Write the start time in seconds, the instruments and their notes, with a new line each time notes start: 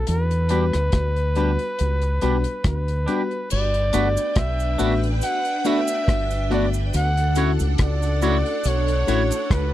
0.07 fingered electric bass E2, flugelhorn B4, closed hi-hat
0.31 closed hi-hat
0.49 fm electric piano G3 B3 D4 F#4, clean electric guitar D4 G4 B4, closed hi-hat
0.73 fingered electric bass D2, cross-stick, closed hi-hat
0.92 fingered electric bass D2, kick, cross-stick, closed hi-hat
1.16 closed hi-hat
1.35 fm electric piano G3 B3 D4 F#4, clean electric guitar D4 G4 B4, closed hi-hat
1.59 closed hi-hat
1.79 fingered electric bass C#2, closed hi-hat
2.02 muted clean electric guitar stroke, closed hi-hat
2.21 fingered electric bass B1, fm electric piano G3 B3 D4 F#4, clean electric guitar D4 G4 B4, closed hi-hat
2.44 fm electric piano D4 F#4, closed hi-hat
2.64 fingered electric bass D2, flugelhorn B4, kick, cross-stick, closed hi-hat
2.88 closed hi-hat
3.06 fm electric piano G3 B3 D4 F#4, clean electric guitar D4 G4 B4, closed hi-hat
3.31 closed hi-hat
3.50 fingered electric bass G1, string machine D4 B4 G5, flugelhorn D5, crash, cabasa
3.74 closed hi-hat
3.93 fingered electric bass G1, fm electric piano A3 B3 D4 F#4, clean electric guitar D4 F#4 B4, closed hi-hat, cabasa
4.17 closed hi-hat, cabasa
4.36 fingered electric bass B1, flugelhorn E5, kick, cross-stick, closed hi-hat
4.60 closed hi-hat, cabasa
4.78 fingered electric bass A1, fm electric piano A3 B3 D4 F#4, clean electric guitar D4 F#4 B4, closed hi-hat, cabasa
5.03 closed hi-hat
5.21 flugelhorn F#5, closed hi-hat, cabasa
5.45 closed hi-hat
5.65 fm electric piano A3 B3 D4 F#4, clean electric guitar D4 F#4 B4, flugelhorn E5, closed hi-hat, cabasa
5.88 closed hi-hat, cabasa
6.08 fingered electric bass G1, kick, cross-stick, closed hi-hat
6.31 closed hi-hat, cabasa
6.50 fm electric piano A3 B3 D4 F#4, clean electric guitar D4 F#4 B4, flugelhorn D5, closed hi-hat
6.74 closed hi-hat, cabasa
6.94 fingered electric bass D2, string machine D4 A4 F#5, flugelhorn F#5, closed hi-hat, cabasa
7.17 closed hi-hat
7.35 fm electric piano A3 C#4 E4 F#4, clean electric guitar E4 F#4 C#5, closed hi-hat, cabasa
7.59 fingered electric bass C#2, closed hi-hat, cabasa
7.78 fingered electric bass C#2, kick, cross-stick, closed hi-hat
7.83 flugelhorn D5
8.02 closed hi-hat, cabasa
8.22 fm electric piano A3 C#4 E4 F#4, clean electric guitar E4 F#4 C#5, closed hi-hat, cabasa
8.46 closed hi-hat
8.64 fingered electric bass B1, closed hi-hat, cabasa
8.68 flugelhorn C#5
8.88 closed hi-hat
9.07 fingered electric bass A1, fm electric piano A3 C#4 E4 F#4, clean electric guitar E4 F#4 C#5, closed hi-hat, cabasa
9.31 closed hi-hat, cabasa
9.51 fingered electric bass C#2, flugelhorn B4, kick, cross-stick, closed hi-hat